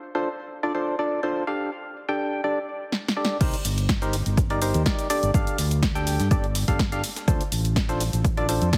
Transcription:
0.15 synth stab D4 F4 A4 C5
0.63 synth stab D4 F4 A4 D5
0.75 synth stab D4 F4 A4 C5
0.99 synth stab D4 F4 A4 D5
1.23 synth stab D4 F4 A4 C5
1.47 synth stab D4 G4 A4 F5
2.09 synth stab D4 G4 A4 G5
2.44 synth stab D4 G4 A4 D5
2.92 snare
3.08 snare
3.17 synth stab D4 G4 A4 D5
3.25 snare
3.41 fingered electric bass C2, synth stab D#4 G4 A#4 C5, kick, closed hi-hat, crash, shaker
3.54 closed hi-hat, shaker
3.65 fingered electric bass G1, closed hi-hat, open hi-hat, shaker
3.78 closed hi-hat, shaker
3.89 kick, snare, closed hi-hat, shaker
4.02 synth stab D#4 G4 A#4 C5, closed hi-hat, shaker
4.13 closed hi-hat, open hi-hat, shaker
4.26 fingered electric bass G1, closed hi-hat, shaker
4.37 kick, closed hi-hat, shaker
4.50 synth stab D#4 G4 A#4 D5, closed hi-hat
4.62 synth stab D#4 G4 A#4 C5, closed hi-hat, open hi-hat, shaker
4.74 fingered electric bass D#2, closed hi-hat, shaker
4.86 synth stab D#4 G4 A#4 D5, kick, snare, closed hi-hat, shaker
4.99 closed hi-hat, shaker
5.10 synth stab D4 G4 A4 D5, closed hi-hat, open hi-hat, shaker
5.23 fingered electric bass G1, closed hi-hat, shaker
5.34 fingered electric bass G1, synth stab D4 G4 A4 F5, kick, closed hi-hat, shaker
5.47 closed hi-hat, shaker
5.58 fingered electric bass D2, snare, open hi-hat, shaker
5.71 closed hi-hat, shaker
5.83 kick, snare, closed hi-hat, shaker
5.95 synth stab D4 G4 A4 G5, closed hi-hat, shaker
6.07 closed hi-hat, open hi-hat, shaker
6.20 fingered electric bass G2, snare, closed hi-hat, shaker
6.31 fingered electric bass G1, synth stab D4 G4 A4 D5, kick, closed hi-hat, shaker
6.44 closed hi-hat
6.55 snare, closed hi-hat, open hi-hat, shaker
6.68 fingered electric bass G1, synth stab D4 G4 A4 F5, kick, closed hi-hat, shaker
6.79 kick, snare, closed hi-hat, shaker
6.92 synth stab D4 G4 A4 F5, closed hi-hat, shaker
7.04 closed hi-hat, open hi-hat, shaker
7.16 snare, closed hi-hat, shaker
7.28 fingered electric bass D2, synth stab D4 F4 A4 C5, kick, closed hi-hat, shaker
7.41 closed hi-hat, shaker
7.52 fingered electric bass A1, closed hi-hat, open hi-hat, shaker
7.65 closed hi-hat, shaker
7.76 kick, snare, closed hi-hat, shaker
7.89 synth stab D4 F4 A4 C5, closed hi-hat, shaker
8.00 closed hi-hat, open hi-hat, shaker
8.13 fingered electric bass A1, closed hi-hat, shaker
8.24 kick, closed hi-hat, shaker
8.37 synth stab D4 F4 A4 D5, closed hi-hat
8.49 synth stab D4 F4 A4 C5, closed hi-hat, open hi-hat, shaker
8.61 fingered electric bass F2, closed hi-hat, shaker
8.73 synth stab D4 F4 A4 D5, kick, snare, closed hi-hat, shaker

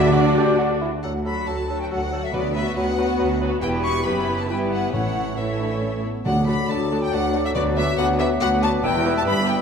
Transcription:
Already playing: double bass section D2, timpani D3, cello section D3, french horn section A3 F#4, viola section D4 F#4, violin section E4 E5, clarinet F#4, trumpet D5, cor anglais D5, flute E5
0.13 french horn section A3 F#4, violin section D4 D5, viola section D4 F#4, bassoon F#4, trumpet D5, flute D5
0.37 bassoon G4
0.58 bassoon F#4
0.81 bassoon E4
1.03 double bass section D2, cello section D2, bassoon F#3, french horn section A3 F#4, clarinet F#4, cor anglais A4, flute F#5, violin section F#5
1.25 bassoon F#3, viola section F#3 F#4, violin section F#4 A4 B5, clarinet F#4, cor anglais A4, flute B5
1.47 double bass section D2, cello section D2, bassoon F#3, french horn section A3 F#4, clarinet F#4, cor anglais A4, flute A5, violin section A5
1.68 viola section F#3 F#4, bassoon F#3, violin section F#4 A4, clarinet F#4, cor anglais A4
1.80 flute G5, violin section G5
1.91 double bass section D2, cello section D2, bassoon F#3, french horn section A3 F#4, clarinet F#4, cor anglais A4, violin section F#5, flute F#5
2.12 bassoon F#3, viola section F#3 F#4, clarinet F#4, violin section F#4 A4, cor anglais A4
2.24 flute E5, violin section E5
2.33 cello section D2, double bass section D2, timpani D3, bassoon F#3, viola section B3 F#4, french horn section B3 F#4, violin section F#4 B4 D5, clarinet F#4, cor anglais B4, flute D5
2.54 bassoon F#3, viola section B3 F#4, violin section F#4 B4 E5, clarinet F#4, cor anglais B4, flute E5
2.76 double bass section D2, cello section D2, bassoon F#3, french horn section B3 F#4, clarinet F#4, cor anglais B4, violin section F#5, flute F#5
2.97 bassoon F#3, viola section B3 F#4, clarinet F#4, violin section F#4 B4, cor anglais B4
3.18 cello section D2, double bass section D2, bassoon F#3, clarinet F#4, cor anglais B4
3.40 bassoon F#3, viola section B3 F#4, clarinet F#4, violin section F#4 B4, cor anglais B4
3.61 double bass section E1, cello section E2, bassoon E3, french horn section B3 G4, viola section B3 E4, clarinet G4, violin section G4 B4 G5, cor anglais B4, flute G5
3.83 violin section C#6, flute C#6
4.05 double bass section F#1, cello section F#2, bassoon E3, french horn section B3 G4, viola section B3 E4, clarinet G4, violin section G4 B4 B5, cor anglais B4, flute B5
4.38 flute A5, violin section A5
4.49 double bass section G1, cello section G2, bassoon E3, viola section B3 E4, french horn section B3 E4, violin section E4 B4 G5, clarinet G4, cor anglais B4, flute G5
4.72 flute F#5, violin section F#5
4.93 double bass section A1, timpani A2, cello section A2, bassoon E3, viola section A3 E4, french horn section C#4 E4, violin section A4 C#5 F#5, clarinet A4, cor anglais C#5, flute F#5
5.37 bassoon E3, viola section A3 E4, french horn section E4, violin section A4 C#5 E5, clarinet A4, cor anglais C#5, flute E5
5.61 french horn section D4
5.82 french horn section C#4
6.04 french horn section B3
6.25 cello section D2, double bass section D2, timpani D3, bassoon F#3, viola section A3 F#4, french horn section D4 F#4, violin section A4 D5 F#5, clarinet A4, cor anglais D5, flute F#5
6.48 viola section A3 F#4, violin section A4 D5 B5, flute B5
6.69 cello section D2, double bass section D2, viola section A3 F#4, violin section A4 D5 A5, flute A5
6.91 viola section A3 F#4, violin section A4 D5
7.02 flute G5, violin section G5
7.12 cello section D2, double bass section D2, viola section A3 F#4, violin section A4 D5 F#5, flute F#5
7.34 viola section A3 F#4, violin section A4 D5
7.45 flute E5, violin section E5
7.55 cello section D2, double bass section D2, timpani D3, viola section B3 F#4, french horn section B3, violin section F#4 B4 D5, clarinet B4, flute D5
7.76 viola section B3 F#4, violin section F#4 B4 E5, flute E5
7.98 double bass section D2, cello section D2, viola section B3 F#4, violin section F#4 B4 F#5, flute F#5
8.19 viola section B3 F#4, violin section F#4 B4 E5, flute E5
8.41 double bass section D2, cello section D2, viola section B3 F#4, violin section F#4 B4 F#5, flute F#5
8.61 viola section B3 F#4, violin section F#4 B4 A5, flute A5
8.83 double bass section E1, cello section E2, bassoon G3, french horn section B3 E4, viola section B3 E4, violin section G4 B4 G5, cor anglais E5, flute G5
9.05 viola section B3 E4, violin section G4 B4
9.16 flute A5, violin section A5
9.26 double bass section G1, cello section G2, french horn section B3 E4, viola section B3 E4, violin section G4 B4 B5, flute B5
9.48 viola section B3 E4, french horn section F#4, violin section G4 B4 G5, flute G5

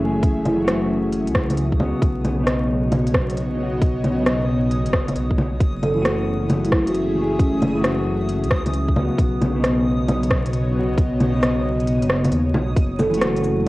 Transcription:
Already playing: detuned saw bass F#1, clean electric guitar E3, analog synth pad F#3 A3 C#4 G#4 E5, synth texture D#6
0.00 clean electric guitar A3 G#4
0.23 detuned saw bass F#1, kick, closed hi-hat
0.45 marimba E4, closed hi-hat, low bongo
0.57 clean electric guitar E3
0.61 clean electric guitar A3 F#4
0.68 cross-stick, closed hi-hat
1.13 closed hi-hat
1.28 detuned saw bass C#2, closed hi-hat
1.35 kick, cross-stick
1.50 closed hi-hat, low bongo
1.57 closed hi-hat
1.72 clean electric guitar C#3, kick
1.80 clean electric guitar B3 F#4, low bongo
2.02 detuned saw bass B1, analog synth pad B2, kick, closed hi-hat
2.18 analog synth pad F#4 C#5
2.25 closed hi-hat, low bongo
2.29 analog synth pad B3
2.36 clean electric guitar C#3
2.40 clean electric guitar B3
2.44 clean electric guitar D#4, cross-stick, closed hi-hat
2.92 closed hi-hat, low bongo
3.06 analog synth pad D#5, closed hi-hat
3.14 kick, cross-stick
3.30 closed hi-hat
3.37 closed hi-hat
3.54 clean electric guitar C#3
3.58 clean electric guitar B3
3.63 clean electric guitar F#4
3.81 detuned saw bass B1, kick, closed hi-hat
4.04 closed hi-hat, low bongo
4.15 clean electric guitar C#3 B3
4.22 clean electric guitar D#4, cross-stick, closed hi-hat
4.71 closed hi-hat
4.86 detuned saw bass F#1, closed hi-hat
4.93 kick, cross-stick
5.08 closed hi-hat, low bongo
5.15 detuned saw bass B1, closed hi-hat
5.30 kick
5.38 low bongo
5.60 detuned saw bass F#1, analog synth pad F#3, kick, closed hi-hat
5.82 analog synth pad A3 C#4, marimba A4, closed hi-hat, low bongo
5.94 clean electric guitar E3 A3
6.02 clean electric guitar F#4, cross-stick, closed hi-hat
6.08 analog synth pad G#4
6.23 analog synth pad E5
6.50 closed hi-hat, low bongo
6.65 marimba E4, closed hi-hat
6.72 kick, cross-stick
6.87 marimba F#4, closed hi-hat
6.95 closed hi-hat
7.13 clean electric guitar E3 A3
7.21 clean electric guitar G#4
7.39 detuned saw bass F#1, marimba C#4, kick, closed hi-hat
7.54 marimba C#4
7.62 closed hi-hat, low bongo
7.73 clean electric guitar E3
7.77 clean electric guitar A3 F#4
7.84 cross-stick, closed hi-hat
8.29 closed hi-hat
8.44 detuned saw bass C#2, closed hi-hat
8.51 kick, cross-stick
8.66 closed hi-hat, low bongo
8.74 closed hi-hat
8.89 clean electric guitar C#3, kick
8.96 clean electric guitar B3 F#4, low bongo
9.18 detuned saw bass B1, analog synth pad B2, kick, closed hi-hat
9.28 analog synth pad B3
9.41 analog synth pad F#4, closed hi-hat, low bongo
9.49 clean electric guitar C#3, analog synth pad C#5
9.56 clean electric guitar B3 D#4
9.64 cross-stick, closed hi-hat
10.08 analog synth pad D#5, closed hi-hat, low bongo
10.23 closed hi-hat
10.30 kick, cross-stick
10.46 closed hi-hat
10.53 closed hi-hat
10.71 clean electric guitar C#3 B3
10.79 clean electric guitar F#4
10.98 detuned saw bass B1, kick, closed hi-hat
11.20 closed hi-hat, low bongo
11.31 clean electric guitar C#3
11.35 clean electric guitar B3 D#4
11.43 cross-stick, closed hi-hat
11.80 closed hi-hat
11.87 closed hi-hat
12.02 detuned saw bass F#1, closed hi-hat
12.10 cross-stick
12.25 closed hi-hat, low bongo
12.32 detuned saw bass D#2, closed hi-hat
12.54 detuned saw bass B1, low bongo
12.77 detuned saw bass F#1, analog synth pad F#3, synth texture D#6, kick, closed hi-hat
12.99 analog synth pad C#4, marimba A4, low bongo, cabasa
13.10 clean electric guitar E3 A3
13.14 clean electric guitar F#4, closed hi-hat
13.22 cross-stick, closed hi-hat
13.31 analog synth pad G#4
13.37 closed hi-hat
13.42 analog synth pad A3, cabasa
13.54 analog synth pad E5

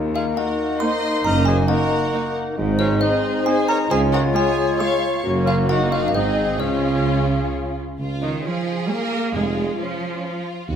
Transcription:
Already playing: double bass section D#2, tuba D#2, cello section D#2, bassoon A#3, french horn section A#3 D#4, clarinet D#4, flute section D#5
0.15 cor anglais F4, violin section G#4 F5, music box F5
0.36 viola section A#3 D#4, cor anglais F#4, violin section A#4 F#5, music box F#5
0.80 viola section A#3 D#4, cor anglais C5, violin section D#5 C6, music box C6
1.24 tuba F#1, double bass section F#1, cello section F#2, cor anglais A#4, violin section D#5 A#5, music box A#5
1.45 cor anglais G#4, violin section C5 G#5, music box G#5
1.68 viola section A#3 D#4, cor anglais F#4, violin section A#4 F#5, music box F#5
2.13 viola section A#3 D#4
2.57 double bass section G#1, tuba G#1, cello section G#2, bassoon G#3, french horn section C4 D#4, clarinet D#4, flute section C5
2.79 cor anglais C#4, violin section F4 C#5, music box C#5
3.01 viola section C4 D#4, cor anglais D#4, violin section G#4 D#5, music box D#5
3.45 viola section C4 D#4, cor anglais G#4, violin section C5 G#5, music box G#5
3.68 cor anglais A#4, violin section C#5 A#5, music box A#5
3.90 double bass section C#2, tuba C#2, cello section C#3, french horn section G#3 F4, clarinet F4, cor anglais G#4, violin section C5 G#5, flute section C#5, music box G#5
4.13 cor anglais F#4, violin section A#4 F#5, music box F#5
4.34 viola section G#3 F4, cor anglais G#4, violin section C#5 G#5, music box G#5
4.79 viola section G#3 F4, cor anglais C#5, violin section F5 C#6, music box C#6
5.23 double bass section F#1, tuba F#1, cello section F#2, french horn section A#3 F#4, viola section A#3 C#4, bassoon A#3, clarinet F#4
5.45 cor anglais F4, violin section G#4 F5, music box F5
5.69 viola section A#3 D#4, french horn section D#4, cor anglais F#4, violin section A#4 F#5, flute section D#5, music box F#5
5.92 cor anglais F4, violin section G#4 F5, music box F5
6.08 music box F5
6.14 double bass section G#1, tuba G#1, cello section G#2, french horn section C4, viola section C4 D#4, bassoon C4, cor anglais D#4, clarinet G#4, violin section G#4 D#5, music box D#5
6.60 tuba C#2, double bass section C#2, cello section C#3, cor anglais C#4, french horn section C#4 F4, viola section C#4 F4, bassoon C#4, violin section F4 C#5, music box C#5, flute section F5
7.99 tuba C#2, double bass section C#2, violin section F4
8.22 cello section D#3, viola section D#4
8.44 cello section F3, viola section F4, violin section G#4 C#5
8.89 cello section A#3, viola section A#4, violin section C#5
9.33 tuba F1, double bass section F2, cello section G#3, violin section F4, viola section G#4
9.78 cello section F3, violin section C#4 C#5, viola section F4
10.23 violin section F4 C#5
10.68 double bass section D#2, tuba D#2, violin section F#4

